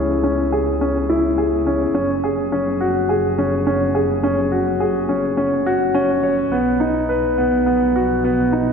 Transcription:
Already playing: double bass section C#2, upright piano C#4 E4 G#4
0.23 upright piano C#4
0.52 upright piano G#4
0.81 upright piano C#4
1.09 upright piano E4
1.38 upright piano G#4
1.67 upright piano C#4
1.95 double bass section F#1, upright piano C#4
2.24 upright piano G#4
2.52 upright piano C#4
2.81 upright piano F#4
3.09 upright piano G#4
3.38 upright piano C#4
3.67 upright piano C#4
3.95 upright piano G#4
4.23 upright piano C#4
4.52 upright piano F#4
4.80 upright piano G#4
5.09 upright piano C#4
5.37 upright piano C#4
5.66 upright piano F#4
5.95 upright piano C#4
6.23 upright piano C#5
6.52 double bass section B1, upright piano B3
6.80 upright piano D#4
7.09 upright piano B4
7.38 upright piano B3
7.66 upright piano B3
7.96 upright piano F#4
8.24 upright piano B3
8.52 upright piano D#4

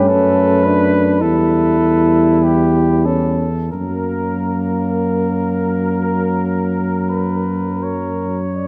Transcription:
Already playing: tuba G2, trombone A3, euphonium C#4
0.08 tuba F#2, flugelhorn A4, cornet B4
0.64 euphonium D4, flugelhorn B4
1.19 tuba E2, trombone G3, euphonium E4, cornet A4, flugelhorn B4
1.80 trombone G3
2.44 cornet G4
3.06 euphonium C#4, cornet A4
3.72 tuba F#2, trombone F#3, euphonium A#3, cornet A#4, flugelhorn A#4
5.10 flugelhorn A#4
7.09 flugelhorn B4
7.83 flugelhorn C#5
8.57 cornet D5

